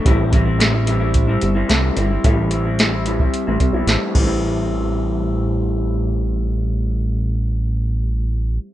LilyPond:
<<
  \new Staff \with { instrumentName = "Clean electric guitar" } { \time 4/4 \key a \minor \tempo 4 = 110 <a, e g c' e'>8 <e g c' e'>16 <g c' e'>16 <a, e g c' e'>16 <g c' e'>16 <e g c' e'>16 <g c' e'>8 <g c' e'>8 <g c' e'>16 <a, e g c' e'>8 <e g c' e'>16 <g c' e'>16 | <a, e g c' e'>8 <e g c' e'>16 <g c' e'>16 <a, e g c' e'>16 <g c' e'>16 <e g c' e'>16 <g c' e'>8 <g c' e'>8 <g c' e'>16 <a, e g c' e'>8 <a, e g c' e'>8~ | <a, e g c' e'>1~ | <a, e g c' e'>1 | }
  \new Staff \with { instrumentName = "Analog synth bass" } { \clef bass \time 4/4 \key a \minor a,,2~ a,,8 g,,8 c,8 g,,8 | a,,2 r16 a,,16 c,16 b,,16 a,,16 r16 a,,8~ | a,,1~ | a,,1 | }
  \new DrumStaff \with { instrumentName = "Drums" } \drummode { \time 4/4 <hh bd>8 <hh bd>8 <hh sn>8 hh8 <hh bd>8 hh8 <hh sn>8 hh8 | <hh bd>8 hh8 <hh sn>8 hh16 bd16 hh8 <hh bd>8 <hh sn>8 <cymc bd>8 | r4 r4 r4 r4 | r4 r4 r4 r4 | }
>>